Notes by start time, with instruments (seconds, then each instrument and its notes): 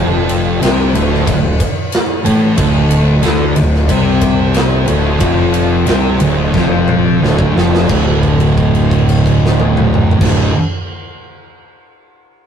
Already playing: fingered electric bass F1, distorted electric guitar F2 F3
0.29 ride
0.62 fingered electric bass C2, distorted electric guitar C3 C4, snare, ride
0.94 fingered electric bass D1, distorted electric guitar D2 D3, ride
1.14 snare
1.27 fingered electric bass D1, distorted electric guitar D2, kick, ride
1.60 kick, ride
1.92 snare, ride
2.25 fingered electric bass A1, distorted electric guitar A2 A3, ride
2.58 fingered electric bass D1, distorted electric guitar D2 D3, kick, ride
2.91 ride
3.23 fingered electric bass D2, distorted electric guitar D3 D4, snare, ride
3.56 fingered electric bass D1, distorted electric guitar D2, ride
3.74 snare
3.89 fingered electric bass C2, distorted electric guitar C3 C4, kick, ride
4.21 kick, ride
4.54 snare, ride
4.87 fingered electric bass D1, distorted electric guitar D2 D3, ride
5.20 fingered electric bass F1, distorted electric guitar F2 F3, kick, ride
5.54 ride
5.87 fingered electric bass C2, distorted electric guitar C3 C4, snare, ride
6.20 fingered electric bass D1, distorted electric guitar D2 D3, ride
6.54 fingered electric bass F1, distorted electric guitar F2 F3, kick, snare
6.88 mid tom
7.21 fingered electric bass D1, distorted electric guitar D2 D3, snare
7.39 kick
7.55 fingered electric bass F1, distorted electric guitar F2 F3, snare
7.75 snare
7.88 fingered electric bass D1, distorted electric guitar D2 A2, kick, crash
7.92 distorted electric guitar D3
8.23 kick, crash
8.40 crash
8.58 kick, crash
8.75 crash
8.91 kick, crash
9.09 crash
9.26 kick, crash
9.46 snare
9.60 high tom
9.77 mid tom
9.94 mid tom
10.11 floor tom
10.19 fingered electric bass D1, distorted electric guitar D2 A2 D3, kick, crash
10.24 snare